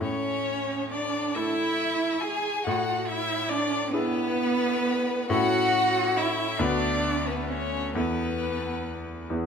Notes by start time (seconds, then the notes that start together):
0.00 A2 C#4 C#5
0.91 D4 D5
1.34 A3 E4 A4 E5
2.20 G#4 G#5
2.64 A2 F#4 F#5
3.06 E4 E5
3.49 D4 D5
3.91 B3 D4 E4 G#4 B4
5.29 A2 C#4 E4 F#4 A4 F#5
6.17 E4 E5
6.59 D2 B3 D4 F#4 B4 D5
7.25 B3 B4
7.49 C#4 C#5
7.95 E2 B3 E4 A4 B4
9.30 E2 B3 E4 G#4